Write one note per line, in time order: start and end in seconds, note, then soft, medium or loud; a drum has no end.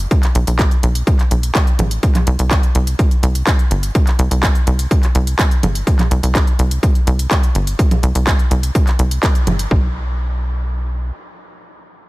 0.11 kick loud
0.11 closed hi-hat medium
0.23 clap soft
0.23 closed hi-hat medium
0.35 0.45 B1 loud
0.35 closed hi-hat loud
0.47 0.67 B1 medium
0.47 closed hi-hat medium
0.59 kick loud
0.59 clap loud
0.59 closed hi-hat medium
0.71 closed hi-hat soft
0.83 1.03 B1 loud
0.83 closed hi-hat loud
0.95 closed hi-hat medium
1.07 kick loud
1.07 closed hi-hat medium
1.19 clap soft
1.19 closed hi-hat soft
1.31 1.51 B1 medium
1.31 closed hi-hat loud
1.43 closed hi-hat medium
1.55 kick loud
1.55 clap loud
1.55 closed hi-hat medium
1.67 closed hi-hat soft
1.79 1.99 A1 medium
1.79 closed hi-hat loud
1.79 low conga medium
1.91 closed hi-hat medium
2.03 kick loud
2.03 closed hi-hat medium
2.15 clap soft
2.15 closed hi-hat medium
2.15 low conga medium
2.27 2.37 C2 loud
2.27 closed hi-hat loud
2.39 2.59 C2 medium
2.39 closed hi-hat medium
2.51 kick loud
2.51 clap loud
2.51 closed hi-hat medium
2.63 closed hi-hat soft
2.75 2.95 C2 loud
2.75 closed hi-hat loud
2.87 closed hi-hat medium
2.99 kick loud
2.99 closed hi-hat medium
3.11 closed hi-hat soft
3.23 3.43 C2 loud
3.23 closed hi-hat loud
3.35 closed hi-hat medium
3.47 kick loud
3.47 clap loud
3.47 closed hi-hat medium
3.59 closed hi-hat soft
3.71 3.91 G1 medium
3.71 closed hi-hat loud
3.83 closed hi-hat medium
3.95 kick loud
3.95 closed hi-hat medium
4.07 clap soft
4.07 closed hi-hat medium
4.19 4.29 C2 loud
4.19 closed hi-hat loud
4.31 4.51 C2 medium
4.31 closed hi-hat medium
4.43 kick loud
4.43 clap loud
4.43 closed hi-hat medium
4.55 closed hi-hat soft
4.67 4.87 C2 medium
4.67 closed hi-hat loud
4.79 closed hi-hat medium
4.91 kick loud
4.91 closed hi-hat medium
5.03 clap soft
5.03 closed hi-hat soft
5.15 5.35 C2 loud
5.15 closed hi-hat loud
5.27 closed hi-hat medium
5.39 kick loud
5.39 clap loud
5.39 closed hi-hat medium
5.51 closed hi-hat soft
5.63 5.83 G1 medium
5.63 closed hi-hat loud
5.63 low conga medium
5.75 closed hi-hat medium
5.87 kick loud
5.87 closed hi-hat medium
5.99 clap soft
5.99 closed hi-hat medium
5.99 low conga medium
6.11 6.21 C2 loud
6.11 closed hi-hat loud
6.23 6.43 C2 medium
6.23 closed hi-hat medium
6.35 kick loud
6.35 clap loud
6.35 closed hi-hat medium
6.47 closed hi-hat soft
6.59 6.79 C2 loud
6.59 closed hi-hat loud
6.71 closed hi-hat medium
6.83 kick loud
6.83 closed hi-hat medium
6.95 closed hi-hat soft
7.07 7.27 C2 loud
7.07 closed hi-hat loud
7.19 closed hi-hat medium
7.31 kick loud
7.31 clap loud
7.31 closed hi-hat medium
7.43 closed hi-hat soft
7.55 7.75 G1 medium
7.55 closed hi-hat loud
7.67 closed hi-hat medium
7.79 kick loud
7.79 closed hi-hat medium
7.91 closed hi-hat medium
7.91 low conga medium
8.03 8.13 C2 loud
8.03 closed hi-hat loud
8.15 8.35 C2 medium
8.15 closed hi-hat medium
8.27 kick loud
8.27 clap loud
8.27 closed hi-hat medium
8.39 closed hi-hat soft
8.51 8.71 C2 loud
8.51 closed hi-hat loud
8.63 closed hi-hat medium
8.75 kick loud
8.75 closed hi-hat medium
8.87 clap soft
8.87 closed hi-hat soft
8.99 9.19 C2 medium
8.99 closed hi-hat loud
9.11 closed hi-hat medium
9.23 kick loud
9.23 clap loud
9.23 closed hi-hat medium
9.35 closed hi-hat soft
9.47 9.67 G1 medium
9.47 closed hi-hat loud
9.47 low conga medium
9.59 closed hi-hat medium
9.71 11.11 B1 medium
9.71 kick loud